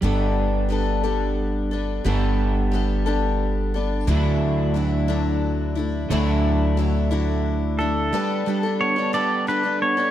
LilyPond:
<<
  \new Staff \with { instrumentName = "Pedal steel guitar" } { \time 6/8 \key g \lydian \tempo 4. = 59 r2. | r2. | r2. | r2 r8 a'8~ |
a'4 cis''8 d''8 b'8 cis''8 | }
  \new Staff \with { instrumentName = "Twelve-string acoustic guitar" } { \time 6/8 \key g \lydian <g b d' a'>4 <g b d' a'>8 <g b d' a'>4 <b d' a'>8 | <g b d' a'>4 <g b d' a'>8 <g b d' a'>4 <b d' a'>8 | <d fis a d' e'>4 <fis a d' e'>8 <d fis a d' e'>4 <a d' e'>8 | <d fis a d' e'>4 <fis a d' e'>8 <d fis a d' e'>4 <a d' e'>8 |
<g b d' a'>8 <g b d' a'>16 <b d' a'>8 <b d' a'>16 <g b d' a'>8 <g b d' a'>16 <b d' a'>8 <b d' a'>16 | }
  \new Staff \with { instrumentName = "Clean electric guitar" } { \time 6/8 \key g \lydian <g b d' a'>2. | <g b d' a'>2. | <d fis a d' e'>2. | <d fis a d' e'>2. |
g8 g8 b8 a'8 d'8 b8 | }
  \new Staff \with { instrumentName = "Upright bass" } { \clef bass \time 6/8 \key g \lydian g,,2. | g,,2. | d,2. | d,2. |
r2. | }
>>